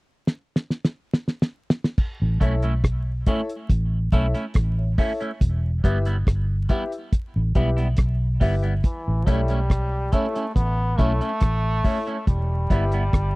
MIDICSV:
0, 0, Header, 1, 6, 480
1, 0, Start_track
1, 0, Tempo, 857388
1, 1109, Time_signature, 4, 2, 24, 8
1, 7477, End_track
2, 0, Start_track
2, 0, Title_t, "Upright piano"
2, 0, Program_c, 0, 0
2, 1348, Note_on_c, 0, 64, 99
2, 1350, Note_on_c, 0, 69, 88
2, 1352, Note_on_c, 0, 73, 87
2, 1354, Note_on_c, 0, 76, 108
2, 1460, Note_off_c, 0, 64, 0
2, 1461, Note_off_c, 0, 69, 0
2, 1462, Note_off_c, 0, 73, 0
2, 1463, Note_off_c, 0, 76, 0
2, 1829, Note_on_c, 0, 64, 90
2, 1831, Note_on_c, 0, 69, 84
2, 1832, Note_on_c, 0, 73, 86
2, 1835, Note_on_c, 0, 76, 107
2, 1941, Note_off_c, 0, 64, 0
2, 1942, Note_off_c, 0, 69, 0
2, 1942, Note_off_c, 0, 73, 0
2, 1944, Note_off_c, 0, 76, 0
2, 2309, Note_on_c, 0, 64, 86
2, 2311, Note_on_c, 0, 69, 77
2, 2314, Note_on_c, 0, 73, 76
2, 2316, Note_on_c, 0, 76, 100
2, 2421, Note_off_c, 0, 64, 0
2, 2422, Note_off_c, 0, 69, 0
2, 2423, Note_off_c, 0, 73, 0
2, 2424, Note_off_c, 0, 76, 0
2, 2677, Note_on_c, 0, 73, 22
2, 2678, Note_on_c, 0, 76, 26
2, 2722, Note_off_c, 0, 73, 0
2, 2722, Note_off_c, 0, 76, 0
2, 2790, Note_on_c, 0, 64, 87
2, 2792, Note_on_c, 0, 69, 83
2, 2795, Note_on_c, 0, 73, 85
2, 2798, Note_on_c, 0, 76, 90
2, 2902, Note_off_c, 0, 64, 0
2, 2903, Note_off_c, 0, 69, 0
2, 2904, Note_off_c, 0, 73, 0
2, 2905, Note_off_c, 0, 76, 0
2, 3270, Note_on_c, 0, 64, 90
2, 3271, Note_on_c, 0, 67, 85
2, 3274, Note_on_c, 0, 71, 85
2, 3275, Note_on_c, 0, 76, 108
2, 3382, Note_off_c, 0, 64, 0
2, 3382, Note_off_c, 0, 67, 0
2, 3384, Note_off_c, 0, 71, 0
2, 3384, Note_off_c, 0, 76, 0
2, 3749, Note_on_c, 0, 64, 93
2, 3751, Note_on_c, 0, 67, 89
2, 3754, Note_on_c, 0, 71, 76
2, 3756, Note_on_c, 0, 76, 102
2, 3861, Note_off_c, 0, 64, 0
2, 3862, Note_off_c, 0, 67, 0
2, 3864, Note_off_c, 0, 71, 0
2, 3864, Note_off_c, 0, 76, 0
2, 4228, Note_on_c, 0, 64, 85
2, 4230, Note_on_c, 0, 67, 85
2, 4232, Note_on_c, 0, 71, 84
2, 4235, Note_on_c, 0, 76, 91
2, 4341, Note_off_c, 0, 64, 0
2, 4342, Note_off_c, 0, 67, 0
2, 4343, Note_off_c, 0, 71, 0
2, 4344, Note_off_c, 0, 76, 0
2, 4709, Note_on_c, 0, 64, 84
2, 4711, Note_on_c, 0, 67, 80
2, 4712, Note_on_c, 0, 71, 87
2, 4716, Note_on_c, 0, 76, 97
2, 4821, Note_off_c, 0, 64, 0
2, 4822, Note_off_c, 0, 67, 0
2, 4823, Note_off_c, 0, 71, 0
2, 4825, Note_off_c, 0, 76, 0
2, 5188, Note_on_c, 0, 64, 84
2, 5191, Note_on_c, 0, 69, 90
2, 5192, Note_on_c, 0, 73, 85
2, 5194, Note_on_c, 0, 76, 102
2, 5301, Note_off_c, 0, 64, 0
2, 5302, Note_off_c, 0, 69, 0
2, 5303, Note_off_c, 0, 73, 0
2, 5304, Note_off_c, 0, 76, 0
2, 5668, Note_on_c, 0, 64, 81
2, 5670, Note_on_c, 0, 69, 86
2, 5673, Note_on_c, 0, 73, 85
2, 5675, Note_on_c, 0, 76, 95
2, 5781, Note_off_c, 0, 64, 0
2, 5782, Note_off_c, 0, 69, 0
2, 5783, Note_off_c, 0, 73, 0
2, 5785, Note_off_c, 0, 76, 0
2, 6149, Note_on_c, 0, 64, 81
2, 6151, Note_on_c, 0, 69, 77
2, 6153, Note_on_c, 0, 73, 77
2, 6155, Note_on_c, 0, 76, 87
2, 6262, Note_off_c, 0, 64, 0
2, 6263, Note_off_c, 0, 69, 0
2, 6264, Note_off_c, 0, 73, 0
2, 6265, Note_off_c, 0, 76, 0
2, 6628, Note_on_c, 0, 64, 86
2, 6630, Note_on_c, 0, 69, 73
2, 6633, Note_on_c, 0, 73, 75
2, 6635, Note_on_c, 0, 76, 86
2, 6741, Note_off_c, 0, 64, 0
2, 6743, Note_off_c, 0, 69, 0
2, 6744, Note_off_c, 0, 73, 0
2, 6745, Note_off_c, 0, 76, 0
2, 7110, Note_on_c, 0, 64, 96
2, 7111, Note_on_c, 0, 67, 83
2, 7114, Note_on_c, 0, 71, 81
2, 7117, Note_on_c, 0, 76, 113
2, 7222, Note_off_c, 0, 64, 0
2, 7223, Note_off_c, 0, 67, 0
2, 7225, Note_off_c, 0, 71, 0
2, 7226, Note_off_c, 0, 76, 0
2, 7477, End_track
3, 0, Start_track
3, 0, Title_t, "Clean electric guitar"
3, 0, Program_c, 1, 27
3, 1346, Note_on_c, 1, 57, 79
3, 1350, Note_on_c, 1, 61, 75
3, 1351, Note_on_c, 1, 64, 73
3, 1421, Note_off_c, 1, 57, 0
3, 1423, Note_off_c, 1, 61, 0
3, 1423, Note_off_c, 1, 64, 0
3, 1472, Note_on_c, 1, 64, 59
3, 1475, Note_on_c, 1, 61, 51
3, 1479, Note_on_c, 1, 57, 60
3, 1526, Note_off_c, 1, 64, 0
3, 1528, Note_off_c, 1, 61, 0
3, 1530, Note_off_c, 1, 57, 0
3, 1831, Note_on_c, 1, 57, 90
3, 1834, Note_on_c, 1, 61, 80
3, 1837, Note_on_c, 1, 64, 85
3, 1904, Note_off_c, 1, 57, 0
3, 1905, Note_off_c, 1, 61, 0
3, 1907, Note_off_c, 1, 64, 0
3, 2309, Note_on_c, 1, 57, 86
3, 2313, Note_on_c, 1, 61, 88
3, 2315, Note_on_c, 1, 64, 84
3, 2383, Note_off_c, 1, 57, 0
3, 2385, Note_off_c, 1, 61, 0
3, 2386, Note_off_c, 1, 64, 0
3, 2432, Note_on_c, 1, 64, 64
3, 2435, Note_on_c, 1, 61, 54
3, 2437, Note_on_c, 1, 57, 52
3, 2487, Note_off_c, 1, 64, 0
3, 2488, Note_off_c, 1, 61, 0
3, 2489, Note_off_c, 1, 57, 0
3, 2789, Note_on_c, 1, 57, 75
3, 2791, Note_on_c, 1, 61, 85
3, 2792, Note_on_c, 1, 64, 85
3, 2862, Note_off_c, 1, 57, 0
3, 2864, Note_off_c, 1, 61, 0
3, 2864, Note_off_c, 1, 64, 0
3, 2913, Note_on_c, 1, 64, 49
3, 2914, Note_on_c, 1, 61, 53
3, 2919, Note_on_c, 1, 57, 46
3, 2967, Note_off_c, 1, 64, 0
3, 2968, Note_off_c, 1, 61, 0
3, 2970, Note_off_c, 1, 57, 0
3, 3269, Note_on_c, 1, 55, 85
3, 3273, Note_on_c, 1, 59, 85
3, 3278, Note_on_c, 1, 64, 81
3, 3343, Note_off_c, 1, 55, 0
3, 3345, Note_off_c, 1, 59, 0
3, 3347, Note_off_c, 1, 64, 0
3, 3393, Note_on_c, 1, 64, 64
3, 3396, Note_on_c, 1, 59, 62
3, 3398, Note_on_c, 1, 55, 57
3, 3447, Note_off_c, 1, 64, 0
3, 3449, Note_off_c, 1, 59, 0
3, 3450, Note_off_c, 1, 55, 0
3, 3746, Note_on_c, 1, 55, 83
3, 3749, Note_on_c, 1, 59, 88
3, 3752, Note_on_c, 1, 64, 99
3, 3821, Note_off_c, 1, 55, 0
3, 3823, Note_off_c, 1, 59, 0
3, 3824, Note_off_c, 1, 64, 0
3, 4228, Note_on_c, 1, 55, 73
3, 4233, Note_on_c, 1, 59, 75
3, 4236, Note_on_c, 1, 64, 91
3, 4303, Note_off_c, 1, 55, 0
3, 4305, Note_off_c, 1, 59, 0
3, 4307, Note_off_c, 1, 64, 0
3, 4349, Note_on_c, 1, 64, 62
3, 4354, Note_on_c, 1, 59, 53
3, 4356, Note_on_c, 1, 55, 49
3, 4405, Note_off_c, 1, 64, 0
3, 4408, Note_off_c, 1, 59, 0
3, 4409, Note_off_c, 1, 55, 0
3, 4704, Note_on_c, 1, 55, 68
3, 4708, Note_on_c, 1, 59, 78
3, 4711, Note_on_c, 1, 64, 90
3, 4781, Note_off_c, 1, 55, 0
3, 4783, Note_off_c, 1, 59, 0
3, 4784, Note_off_c, 1, 64, 0
3, 4830, Note_on_c, 1, 64, 56
3, 4833, Note_on_c, 1, 59, 56
3, 4837, Note_on_c, 1, 55, 47
3, 4886, Note_off_c, 1, 64, 0
3, 4887, Note_off_c, 1, 59, 0
3, 4889, Note_off_c, 1, 55, 0
3, 5187, Note_on_c, 1, 57, 92
3, 5191, Note_on_c, 1, 61, 80
3, 5192, Note_on_c, 1, 64, 91
3, 5262, Note_off_c, 1, 57, 0
3, 5264, Note_off_c, 1, 61, 0
3, 5265, Note_off_c, 1, 64, 0
3, 5313, Note_on_c, 1, 64, 65
3, 5319, Note_on_c, 1, 61, 65
3, 5321, Note_on_c, 1, 57, 52
3, 5368, Note_off_c, 1, 64, 0
3, 5371, Note_off_c, 1, 57, 0
3, 5371, Note_off_c, 1, 61, 0
3, 5667, Note_on_c, 1, 57, 72
3, 5669, Note_on_c, 1, 61, 86
3, 5672, Note_on_c, 1, 64, 86
3, 5742, Note_off_c, 1, 57, 0
3, 5743, Note_off_c, 1, 61, 0
3, 5745, Note_off_c, 1, 64, 0
3, 5795, Note_on_c, 1, 64, 57
3, 5800, Note_on_c, 1, 57, 49
3, 5800, Note_on_c, 1, 61, 55
3, 5849, Note_off_c, 1, 64, 0
3, 5851, Note_off_c, 1, 57, 0
3, 5851, Note_off_c, 1, 61, 0
3, 6146, Note_on_c, 1, 57, 84
3, 6149, Note_on_c, 1, 61, 89
3, 6152, Note_on_c, 1, 64, 91
3, 6222, Note_off_c, 1, 57, 0
3, 6223, Note_off_c, 1, 61, 0
3, 6225, Note_off_c, 1, 64, 0
3, 6274, Note_on_c, 1, 64, 55
3, 6277, Note_on_c, 1, 61, 56
3, 6279, Note_on_c, 1, 57, 55
3, 6328, Note_off_c, 1, 64, 0
3, 6330, Note_off_c, 1, 61, 0
3, 6331, Note_off_c, 1, 57, 0
3, 6631, Note_on_c, 1, 57, 65
3, 6634, Note_on_c, 1, 61, 68
3, 6636, Note_on_c, 1, 64, 75
3, 6705, Note_off_c, 1, 57, 0
3, 6706, Note_off_c, 1, 61, 0
3, 6707, Note_off_c, 1, 64, 0
3, 6756, Note_on_c, 1, 64, 54
3, 6759, Note_on_c, 1, 61, 55
3, 6761, Note_on_c, 1, 57, 43
3, 6809, Note_off_c, 1, 64, 0
3, 6811, Note_off_c, 1, 61, 0
3, 6812, Note_off_c, 1, 57, 0
3, 7111, Note_on_c, 1, 55, 83
3, 7115, Note_on_c, 1, 59, 71
3, 7118, Note_on_c, 1, 64, 82
3, 7185, Note_off_c, 1, 55, 0
3, 7187, Note_off_c, 1, 59, 0
3, 7188, Note_off_c, 1, 64, 0
3, 7242, Note_on_c, 1, 64, 54
3, 7245, Note_on_c, 1, 59, 65
3, 7247, Note_on_c, 1, 55, 49
3, 7292, Note_off_c, 1, 64, 0
3, 7294, Note_off_c, 1, 59, 0
3, 7295, Note_off_c, 1, 55, 0
3, 7477, End_track
4, 0, Start_track
4, 0, Title_t, "Trombone"
4, 0, Program_c, 2, 57
4, 4950, Note_on_c, 2, 52, 82
4, 5189, Note_on_c, 2, 55, 102
4, 5198, Note_off_c, 2, 52, 0
4, 5667, Note_on_c, 2, 57, 88
4, 5675, Note_off_c, 2, 55, 0
4, 5907, Note_off_c, 2, 57, 0
4, 5911, Note_on_c, 2, 59, 102
4, 6149, Note_on_c, 2, 57, 121
4, 6158, Note_off_c, 2, 59, 0
4, 6867, Note_off_c, 2, 57, 0
4, 6870, Note_on_c, 2, 55, 94
4, 7477, Note_off_c, 2, 55, 0
4, 7477, End_track
5, 0, Start_track
5, 0, Title_t, "Fingered electric bass"
5, 0, Program_c, 3, 33
5, 1241, Note_on_c, 3, 33, 95
5, 1342, Note_off_c, 3, 33, 0
5, 1352, Note_on_c, 3, 35, 80
5, 1808, Note_off_c, 3, 35, 0
5, 2072, Note_on_c, 3, 33, 89
5, 2289, Note_off_c, 3, 33, 0
5, 2312, Note_on_c, 3, 35, 95
5, 2423, Note_off_c, 3, 35, 0
5, 2552, Note_on_c, 3, 33, 101
5, 2769, Note_off_c, 3, 33, 0
5, 3033, Note_on_c, 3, 28, 89
5, 3249, Note_off_c, 3, 28, 0
5, 3272, Note_on_c, 3, 31, 87
5, 3488, Note_off_c, 3, 31, 0
5, 3513, Note_on_c, 3, 31, 93
5, 3729, Note_off_c, 3, 31, 0
5, 4120, Note_on_c, 3, 33, 80
5, 4222, Note_off_c, 3, 33, 0
5, 4233, Note_on_c, 3, 35, 91
5, 4449, Note_off_c, 3, 35, 0
5, 4473, Note_on_c, 3, 35, 94
5, 4689, Note_off_c, 3, 35, 0
5, 4712, Note_on_c, 3, 31, 96
5, 4929, Note_off_c, 3, 31, 0
5, 5082, Note_on_c, 3, 33, 87
5, 5183, Note_off_c, 3, 33, 0
5, 5193, Note_on_c, 3, 35, 81
5, 5650, Note_off_c, 3, 35, 0
5, 5915, Note_on_c, 3, 33, 89
5, 6131, Note_off_c, 3, 33, 0
5, 6155, Note_on_c, 3, 35, 90
5, 6266, Note_off_c, 3, 35, 0
5, 6395, Note_on_c, 3, 33, 90
5, 6611, Note_off_c, 3, 33, 0
5, 6874, Note_on_c, 3, 28, 86
5, 7090, Note_off_c, 3, 28, 0
5, 7114, Note_on_c, 3, 31, 92
5, 7331, Note_off_c, 3, 31, 0
5, 7356, Note_on_c, 3, 31, 86
5, 7477, Note_off_c, 3, 31, 0
5, 7477, End_track
6, 0, Start_track
6, 0, Title_t, "Drums"
6, 153, Note_on_c, 9, 38, 59
6, 209, Note_off_c, 9, 38, 0
6, 313, Note_on_c, 9, 38, 59
6, 369, Note_off_c, 9, 38, 0
6, 394, Note_on_c, 9, 38, 56
6, 450, Note_off_c, 9, 38, 0
6, 473, Note_on_c, 9, 38, 74
6, 529, Note_off_c, 9, 38, 0
6, 635, Note_on_c, 9, 38, 82
6, 691, Note_off_c, 9, 38, 0
6, 715, Note_on_c, 9, 38, 67
6, 771, Note_off_c, 9, 38, 0
6, 795, Note_on_c, 9, 38, 80
6, 851, Note_off_c, 9, 38, 0
6, 952, Note_on_c, 9, 38, 99
6, 1008, Note_off_c, 9, 38, 0
6, 1032, Note_on_c, 9, 38, 87
6, 1088, Note_off_c, 9, 38, 0
6, 1108, Note_on_c, 9, 36, 120
6, 1108, Note_on_c, 9, 49, 78
6, 1164, Note_off_c, 9, 36, 0
6, 1164, Note_off_c, 9, 49, 0
6, 1348, Note_on_c, 9, 36, 83
6, 1352, Note_on_c, 9, 42, 67
6, 1404, Note_off_c, 9, 36, 0
6, 1408, Note_off_c, 9, 42, 0
6, 1469, Note_on_c, 9, 42, 57
6, 1525, Note_off_c, 9, 42, 0
6, 1589, Note_on_c, 9, 36, 100
6, 1593, Note_on_c, 9, 37, 108
6, 1594, Note_on_c, 9, 42, 83
6, 1645, Note_off_c, 9, 36, 0
6, 1649, Note_off_c, 9, 37, 0
6, 1650, Note_off_c, 9, 42, 0
6, 1827, Note_on_c, 9, 42, 69
6, 1829, Note_on_c, 9, 36, 98
6, 1883, Note_off_c, 9, 42, 0
6, 1885, Note_off_c, 9, 36, 0
6, 1956, Note_on_c, 9, 42, 61
6, 2012, Note_off_c, 9, 42, 0
6, 2069, Note_on_c, 9, 36, 100
6, 2071, Note_on_c, 9, 42, 78
6, 2125, Note_off_c, 9, 36, 0
6, 2127, Note_off_c, 9, 42, 0
6, 2307, Note_on_c, 9, 42, 53
6, 2308, Note_on_c, 9, 36, 78
6, 2363, Note_off_c, 9, 42, 0
6, 2364, Note_off_c, 9, 36, 0
6, 2433, Note_on_c, 9, 42, 54
6, 2489, Note_off_c, 9, 42, 0
6, 2542, Note_on_c, 9, 42, 89
6, 2549, Note_on_c, 9, 36, 109
6, 2553, Note_on_c, 9, 37, 108
6, 2598, Note_off_c, 9, 42, 0
6, 2605, Note_off_c, 9, 36, 0
6, 2609, Note_off_c, 9, 37, 0
6, 2789, Note_on_c, 9, 36, 97
6, 2789, Note_on_c, 9, 46, 58
6, 2845, Note_off_c, 9, 36, 0
6, 2845, Note_off_c, 9, 46, 0
6, 2915, Note_on_c, 9, 42, 46
6, 2971, Note_off_c, 9, 42, 0
6, 3029, Note_on_c, 9, 36, 101
6, 3031, Note_on_c, 9, 42, 90
6, 3085, Note_off_c, 9, 36, 0
6, 3087, Note_off_c, 9, 42, 0
6, 3269, Note_on_c, 9, 36, 87
6, 3273, Note_on_c, 9, 42, 64
6, 3325, Note_off_c, 9, 36, 0
6, 3329, Note_off_c, 9, 42, 0
6, 3389, Note_on_c, 9, 42, 60
6, 3445, Note_off_c, 9, 42, 0
6, 3509, Note_on_c, 9, 36, 114
6, 3515, Note_on_c, 9, 37, 96
6, 3516, Note_on_c, 9, 42, 78
6, 3565, Note_off_c, 9, 36, 0
6, 3571, Note_off_c, 9, 37, 0
6, 3572, Note_off_c, 9, 42, 0
6, 3746, Note_on_c, 9, 42, 70
6, 3749, Note_on_c, 9, 36, 86
6, 3802, Note_off_c, 9, 42, 0
6, 3805, Note_off_c, 9, 36, 0
6, 3875, Note_on_c, 9, 42, 54
6, 3931, Note_off_c, 9, 42, 0
6, 3989, Note_on_c, 9, 36, 99
6, 3989, Note_on_c, 9, 42, 81
6, 4045, Note_off_c, 9, 36, 0
6, 4045, Note_off_c, 9, 42, 0
6, 4227, Note_on_c, 9, 42, 45
6, 4229, Note_on_c, 9, 36, 78
6, 4283, Note_off_c, 9, 42, 0
6, 4285, Note_off_c, 9, 36, 0
6, 4354, Note_on_c, 9, 42, 54
6, 4410, Note_off_c, 9, 42, 0
6, 4460, Note_on_c, 9, 42, 95
6, 4468, Note_on_c, 9, 36, 122
6, 4472, Note_on_c, 9, 37, 105
6, 4516, Note_off_c, 9, 42, 0
6, 4524, Note_off_c, 9, 36, 0
6, 4528, Note_off_c, 9, 37, 0
6, 4708, Note_on_c, 9, 36, 93
6, 4709, Note_on_c, 9, 46, 63
6, 4764, Note_off_c, 9, 36, 0
6, 4765, Note_off_c, 9, 46, 0
6, 4835, Note_on_c, 9, 42, 45
6, 4891, Note_off_c, 9, 42, 0
6, 4949, Note_on_c, 9, 36, 109
6, 4949, Note_on_c, 9, 42, 77
6, 5005, Note_off_c, 9, 36, 0
6, 5005, Note_off_c, 9, 42, 0
6, 5189, Note_on_c, 9, 36, 80
6, 5192, Note_on_c, 9, 42, 69
6, 5245, Note_off_c, 9, 36, 0
6, 5248, Note_off_c, 9, 42, 0
6, 5308, Note_on_c, 9, 42, 54
6, 5364, Note_off_c, 9, 42, 0
6, 5430, Note_on_c, 9, 36, 108
6, 5437, Note_on_c, 9, 37, 93
6, 5438, Note_on_c, 9, 42, 77
6, 5486, Note_off_c, 9, 36, 0
6, 5493, Note_off_c, 9, 37, 0
6, 5494, Note_off_c, 9, 42, 0
6, 5667, Note_on_c, 9, 42, 65
6, 5670, Note_on_c, 9, 36, 84
6, 5723, Note_off_c, 9, 42, 0
6, 5726, Note_off_c, 9, 36, 0
6, 5797, Note_on_c, 9, 42, 57
6, 5853, Note_off_c, 9, 42, 0
6, 5911, Note_on_c, 9, 36, 99
6, 5914, Note_on_c, 9, 42, 84
6, 5967, Note_off_c, 9, 36, 0
6, 5970, Note_off_c, 9, 42, 0
6, 6151, Note_on_c, 9, 36, 73
6, 6152, Note_on_c, 9, 42, 47
6, 6207, Note_off_c, 9, 36, 0
6, 6208, Note_off_c, 9, 42, 0
6, 6277, Note_on_c, 9, 42, 50
6, 6333, Note_off_c, 9, 42, 0
6, 6385, Note_on_c, 9, 42, 88
6, 6391, Note_on_c, 9, 36, 111
6, 6397, Note_on_c, 9, 37, 105
6, 6441, Note_off_c, 9, 42, 0
6, 6447, Note_off_c, 9, 36, 0
6, 6453, Note_off_c, 9, 37, 0
6, 6631, Note_on_c, 9, 36, 90
6, 6632, Note_on_c, 9, 46, 66
6, 6687, Note_off_c, 9, 36, 0
6, 6688, Note_off_c, 9, 46, 0
6, 6758, Note_on_c, 9, 42, 40
6, 6814, Note_off_c, 9, 42, 0
6, 6871, Note_on_c, 9, 36, 98
6, 6872, Note_on_c, 9, 42, 76
6, 6927, Note_off_c, 9, 36, 0
6, 6928, Note_off_c, 9, 42, 0
6, 7111, Note_on_c, 9, 36, 79
6, 7113, Note_on_c, 9, 42, 71
6, 7167, Note_off_c, 9, 36, 0
6, 7169, Note_off_c, 9, 42, 0
6, 7231, Note_on_c, 9, 42, 57
6, 7287, Note_off_c, 9, 42, 0
6, 7352, Note_on_c, 9, 36, 103
6, 7357, Note_on_c, 9, 37, 109
6, 7358, Note_on_c, 9, 42, 77
6, 7408, Note_off_c, 9, 36, 0
6, 7413, Note_off_c, 9, 37, 0
6, 7414, Note_off_c, 9, 42, 0
6, 7477, End_track
0, 0, End_of_file